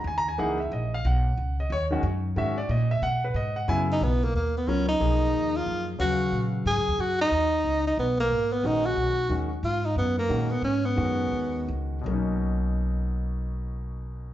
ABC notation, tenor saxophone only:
X:1
M:3/4
L:1/8
Q:"Swing" 1/4=182
K:B
V:1 name="Tenor saxophone"
z6 | z6 | z6 | z4 z D |
[K:Blyd] B, A, A, B, C D- | D3 E2 z | F3 z G2 | F D4 D |
B, A,2 B, D F- | F2 z2 E D | B, A,2 B, C B,- | B,4 z2 |
z6 | z6 |]